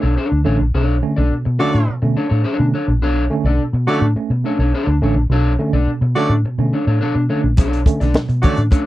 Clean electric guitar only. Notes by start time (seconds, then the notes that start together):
0.02 D4 A4 C#5
0.17 D4 A4 C#5
0.30 muted clean electric guitar stroke
0.45 D4 A4 C#5
0.60 muted clean electric guitar stroke
0.74 D4 A4 C#5
1.02 muted clean electric guitar stroke
1.16 D4 A4 D5
1.45 muted clean electric guitar stroke
1.59 D4 A4 C#5
1.73 muted clean electric guitar stroke
1.88 muted clean electric guitar stroke
2.02 muted clean electric guitar stroke
2.16 D4 A4 C#5
2.29 D4 A4 C#5
2.44 D4 A4 C#5
2.59 muted clean electric guitar stroke
2.74 D4 A4 C#5
2.89 muted clean electric guitar stroke
3.02 D4 A4 C#5
3.32 muted clean electric guitar stroke
3.46 D4 A4 D5
3.74 muted clean electric guitar stroke
3.88 D4 A4 C#5
4.02 muted clean electric guitar stroke
4.17 muted clean electric guitar stroke
4.31 muted clean electric guitar stroke
4.45 D4 A4 C#5
4.60 D4 A4 C#5
4.74 D4 A4 C#5
4.89 muted clean electric guitar stroke
5.03 D4 A4 C#5
5.17 muted clean electric guitar stroke
5.32 D4 A4 C#5
5.60 muted clean electric guitar stroke
5.73 D4 A4 D5
6.02 muted clean electric guitar stroke
6.17 D4 A4 C#5
6.31 muted clean electric guitar stroke
6.45 muted clean electric guitar stroke
6.59 muted clean electric guitar stroke
6.73 D4 A4 C#5
6.87 D4 A4 C#5
7.01 D4 A4 C#5
7.16 muted clean electric guitar stroke
7.29 D4 A4 C#5
7.43 muted clean electric guitar stroke
7.58 D4 A4 C#5
7.88 muted clean electric guitar stroke
8.00 D4 A4 D5
8.29 muted clean electric guitar stroke
8.42 D4 A4 C#5
8.57 muted clean electric guitar stroke
8.71 D4 A4 C#5